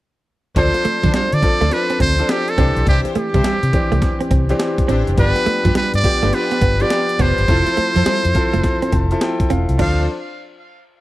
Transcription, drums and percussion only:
0.56 kick, closed hi-hat
0.74 closed hi-hat
0.85 closed hi-hat
1.03 kick, closed hi-hat
1.14 snare, closed hi-hat
1.32 closed hi-hat
1.43 kick, closed hi-hat
1.61 closed hi-hat
1.71 snare, closed hi-hat
1.90 closed hi-hat
2.00 kick, closed hi-hat
2.18 closed hi-hat
2.29 snare, closed hi-hat
2.48 closed hi-hat
2.58 kick, closed hi-hat
2.77 closed hi-hat
2.87 kick, closed hi-hat
3.05 closed hi-hat
3.15 closed hi-hat
3.34 kick, closed hi-hat
3.44 snare, closed hi-hat
3.63 closed hi-hat
3.73 kick, closed hi-hat
3.92 closed hi-hat
4.02 kick, snare, closed hi-hat
4.21 closed hi-hat
4.31 kick, closed hi-hat
4.49 closed hi-hat
4.60 snare, closed hi-hat
4.78 kick, closed hi-hat
4.89 closed hi-hat
5.07 closed hi-hat
5.18 kick, closed hi-hat
5.36 closed hi-hat
5.46 closed hi-hat
5.65 kick, closed hi-hat
5.75 snare, closed hi-hat
5.94 closed hi-hat
6.04 kick, closed hi-hat
6.23 closed hi-hat
6.33 snare, closed hi-hat
6.51 closed hi-hat
6.61 kick, closed hi-hat
6.80 closed hi-hat
6.90 snare, closed hi-hat
7.09 closed hi-hat
7.19 kick, closed hi-hat
7.38 closed hi-hat
7.48 kick, closed hi-hat
7.67 closed hi-hat
7.77 closed hi-hat
7.96 closed hi-hat
8.06 snare, closed hi-hat
8.25 closed hi-hat
8.35 kick, closed hi-hat
8.54 closed hi-hat
8.64 kick, snare, closed hi-hat
8.82 closed hi-hat
8.92 kick, closed hi-hat
9.11 closed hi-hat
9.21 snare, closed hi-hat
9.40 kick, closed hi-hat
9.50 closed hi-hat
9.69 closed hi-hat
9.79 kick, crash

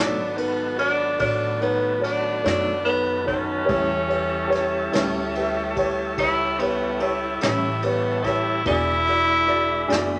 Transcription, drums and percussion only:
0.38 ride
0.79 ride
1.19 kick, ride
1.61 ride
2.04 ride
2.45 snare, ride
2.87 ride
3.28 kick, ride
3.69 kick, ride
4.10 ride
4.52 snare, ride
4.93 snare, ride
5.35 ride
5.76 kick, ride
6.18 kick, ride
6.59 ride
7.00 ride
7.41 snare, ride
7.82 ride
8.24 kick, snare, ride
8.65 kick, ride
9.07 ride
9.49 ride
9.90 snare, ride

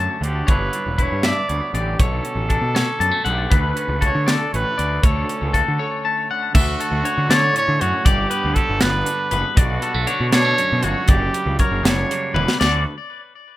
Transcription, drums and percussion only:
0.23 closed hi-hat
0.48 kick, closed hi-hat
0.73 closed hi-hat
0.99 kick, closed hi-hat
1.23 snare, closed hi-hat
1.49 closed hi-hat
1.75 closed hi-hat
2.00 kick, closed hi-hat
2.25 closed hi-hat
2.50 kick, closed hi-hat
2.76 snare, closed hi-hat
3.01 closed hi-hat
3.26 closed hi-hat
3.52 kick, closed hi-hat
3.77 closed hi-hat
4.02 kick, closed hi-hat
4.28 snare, closed hi-hat
4.54 closed hi-hat
4.79 closed hi-hat
5.04 kick, closed hi-hat
5.29 closed hi-hat
5.54 kick, closed hi-hat
6.55 kick, crash
6.80 closed hi-hat
7.05 closed hi-hat
7.31 snare, closed hi-hat
7.56 closed hi-hat
7.81 closed hi-hat
8.06 kick, closed hi-hat
8.31 closed hi-hat
8.56 kick, closed hi-hat
8.81 snare, closed hi-hat
9.06 closed hi-hat
9.31 closed hi-hat
9.57 kick, closed hi-hat
9.82 closed hi-hat
10.07 closed hi-hat
10.32 snare, closed hi-hat
10.58 closed hi-hat
10.83 closed hi-hat
11.08 kick, closed hi-hat
11.34 closed hi-hat
11.59 kick, closed hi-hat
11.85 snare, closed hi-hat
12.11 closed hi-hat
12.36 high tom
12.48 snare
12.61 snare, crash

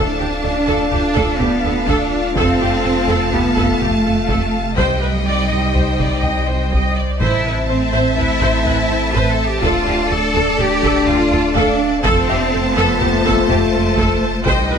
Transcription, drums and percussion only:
0.91 taiko low
1.16 taiko
1.40 taiko low
1.88 taiko
2.36 taiko
3.33 taiko low
3.57 taiko
3.81 taiko low
4.29 taiko
4.78 taiko
5.75 taiko low
6.00 taiko
6.24 taiko low
6.73 taiko
7.21 taiko
8.18 taiko low
8.42 taiko
8.66 taiko low
9.14 taiko
9.63 taiko
10.59 taiko low
10.83 taiko
11.08 taiko low
11.56 taiko
12.05 taiko
13.01 taiko low
13.26 taiko
13.50 taiko low
13.97 taiko
14.46 taiko

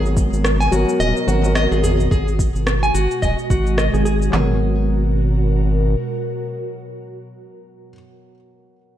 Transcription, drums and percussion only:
0.06 cabasa
0.16 kick, tabla na, cabasa
0.33 cabasa
0.45 cross-stick, cabasa
0.61 cabasa
0.72 tabla na, tabla tin, cabasa
0.89 cabasa
1.01 cabasa
1.16 tabla na, tabla tin, cabasa
1.27 tabla tin, cabasa
1.44 tabla na, cabasa
1.55 cross-stick, cabasa
1.72 cabasa
1.83 tabla ge, cabasa
1.99 tabla ge, cabasa
2.11 kick, cabasa
2.28 cabasa
2.39 kick, cabasa
2.56 cabasa
2.67 cross-stick, cabasa
2.83 cabasa
2.95 cabasa
3.11 cabasa
3.22 kick, cabasa
3.39 cabasa
3.50 kick, cabasa
3.67 cabasa
3.78 cross-stick, cabasa
3.95 cabasa
4.06 cabasa
4.22 cabasa
4.33 snare, clap, floor tom

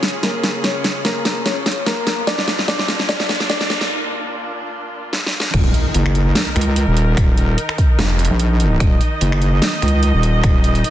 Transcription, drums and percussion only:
0.03 snare, closed hi-hat
0.08 closed hi-hat
0.23 snare, closed hi-hat
0.44 snare, closed hi-hat
0.64 snare, closed hi-hat
0.84 snare, closed hi-hat
1.05 snare, closed hi-hat
1.25 snare, closed hi-hat
1.46 snare, closed hi-hat
1.66 snare, closed hi-hat
1.72 closed hi-hat
1.86 snare, closed hi-hat
2.07 snare, closed hi-hat
2.27 snare, closed hi-hat
2.38 snare
2.48 snare, closed hi-hat
2.59 snare
2.68 snare, closed hi-hat
2.79 snare
2.88 snare, closed hi-hat
3.00 snare
3.09 snare, closed hi-hat
3.20 snare
3.29 snare, closed hi-hat
3.35 closed hi-hat
3.40 snare
3.50 snare, closed hi-hat
3.61 snare
3.70 snare, closed hi-hat
3.81 snare
5.13 snare
5.26 snare
5.40 snare
5.54 finger snap, kick, closed hi-hat, crash
5.74 closed hi-hat
5.94 closed hi-hat
6.06 finger snap
6.15 closed hi-hat
6.35 snare, closed hi-hat
6.56 finger snap, closed hi-hat
6.61 closed hi-hat
6.76 closed hi-hat
6.97 closed hi-hat
7.17 finger snap, kick, closed hi-hat
7.38 closed hi-hat
7.58 closed hi-hat
7.69 finger snap
7.78 kick, closed hi-hat
7.99 snare, closed hi-hat
8.19 closed hi-hat
8.25 closed hi-hat
8.39 closed hi-hat
8.60 closed hi-hat
8.80 finger snap, kick, closed hi-hat
9.01 closed hi-hat
9.21 closed hi-hat
9.32 finger snap
9.42 closed hi-hat
9.62 snare, closed hi-hat
9.82 finger snap, closed hi-hat
9.88 closed hi-hat
10.03 closed hi-hat
10.23 closed hi-hat
10.44 finger snap, kick, closed hi-hat
10.64 closed hi-hat
10.75 closed hi-hat
10.84 closed hi-hat

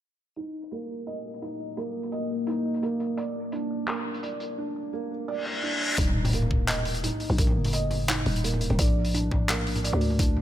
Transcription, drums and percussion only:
0.36 closed hi-hat
0.63 closed hi-hat
0.71 closed hi-hat
1.07 closed hi-hat
1.34 closed hi-hat
1.42 closed hi-hat
1.77 closed hi-hat
2.03 closed hi-hat
2.12 closed hi-hat
2.47 closed hi-hat
2.74 closed hi-hat
2.83 closed hi-hat
3.00 closed hi-hat
3.18 closed hi-hat
3.52 closed hi-hat
3.87 clap, closed hi-hat
4.14 closed hi-hat
4.23 closed hi-hat
4.40 closed hi-hat
5.98 kick, closed hi-hat
6.07 mid tom
6.25 mid tom, open hi-hat
6.33 closed hi-hat
6.42 mid tom
6.51 kick
6.68 clap, closed hi-hat, mid tom
6.85 open hi-hat
6.95 closed hi-hat
7.03 closed hi-hat, mid tom
7.20 open hi-hat
7.30 mid tom
7.38 kick, closed hi-hat
7.47 mid tom
7.65 mid tom, open hi-hat
7.73 closed hi-hat
7.91 mid tom, open hi-hat
8.08 clap, closed hi-hat, mid tom
8.26 mid tom, open hi-hat
8.36 closed hi-hat
8.44 closed hi-hat
8.54 mid tom
8.61 closed hi-hat
8.70 mid tom
8.79 kick, closed hi-hat
8.87 mid tom
9.05 open hi-hat
9.14 closed hi-hat, mid tom
9.31 kick, mid tom
9.49 clap, closed hi-hat, mid tom
9.67 open hi-hat
9.76 closed hi-hat, mid tom
9.85 closed hi-hat
9.93 mid tom
10.01 open hi-hat
10.10 mid tom
10.19 kick, closed hi-hat
10.37 mid tom

